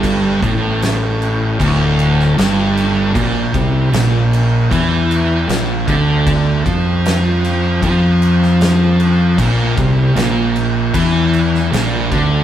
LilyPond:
<<
  \new Staff \with { instrumentName = "Distorted electric guitar" } { \clef bass \time 4/4 \key bes \lydian \tempo 4 = 77 g,8 a,4. d,4 g,4 | bes,8 c8 bes,4 e4 bes,8 d8~ | d8 f4. f2 | bes,8 c8 bes,4 e4 bes,8 d8 | }
  \new Staff \with { instrumentName = "Distorted electric guitar" } { \clef bass \time 4/4 \key bes \lydian g,8 a,4. d,4 g,4 | bes,8 c8 bes,4 e4 bes,8 d8~ | d8 f4. f2 | bes,8 c8 bes,4 e4 bes,8 d8 | }
  \new Staff \with { instrumentName = "Fingered electric bass" } { \clef bass \time 4/4 \key bes \lydian g,,8 a,,4. d,,4 g,,4 | bes,,8 c,8 bes,,4 e,4 bes,,8 d,8~ | d,8 f,4. f,2 | bes,,8 c,8 bes,,4 e,4 bes,,8 d,8 | }
  \new DrumStaff \with { instrumentName = "Drums" } \drummode { \time 4/4 <cymc bd>8 <cymc bd>8 <cymc sn>8 cymc8 <cymc bd>8 cymc16 sn16 <cymc sn>8 cymc8 | <cymc bd>8 <cymc bd>8 <cymc sn>8 cymc8 <cymc bd>8 cymc8 <cymc sn>8 <cymc bd>8 | <cymc bd>8 <cymc bd>8 <cymc sn>8 cymc8 <cymc bd>8 cymc16 sn16 <cymc sn>8 cymc8 | <cymc bd>8 <cymc bd>8 <cymc sn>8 cymc8 <cymc bd>8 cymc16 sn16 <cymc sn>8 <cymc bd>8 | }
>>